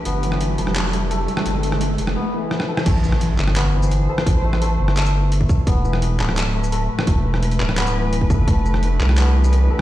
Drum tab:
CC |----------------|----------------|x---------------|----------------|
HH |x-x-x-x-x-x-x-x-|x-x-x-x---------|x---x---x---x---|x---x---x---x---|
SH |----------------|----------------|--x--------x----|---------x----x-|
CP |--------x-------|----------------|------x-x-------|--------x-------|
SD |---r---r-------r|---r---r----rr-r|---r---r-------r|---r---r--------|
BD |----------------|----------------|o---------------|o------------oo-|

CC |----------------|----------------|----------------|
HH |x---x---x---x---|x---xx--x---x---|x---x---x---x---|
SH |--x--------x----|---------x----x-|--x--------x----|
CP |------x-x-------|------x-x-------|------x-x-------|
SD |---r---r-------r|---r---r--------|---r---r--------|
BD |o---------------|o------------oo-|o---------------|